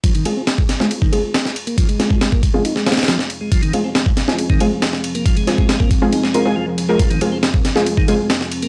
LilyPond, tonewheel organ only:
\new Staff \with { instrumentName = "Tonewheel organ" } { \clef bass \time 4/4 \key f \minor \tempo 4 = 138 f16 ees16 r16 c'16 r4 r16 ees16 aes16 r4 bes16 | f16 aes4 bes16 r8 ees'16 aes8. f16 r8 aes16 | f16 ees16 r16 c'16 r4 r16 ees16 aes16 r4 bes16 | f16 aes4 bes16 r8 ees'16 aes8. f16 r8 aes16 |
f16 ees16 r16 c'16 r4 r16 ees16 aes16 r4 bes16 | }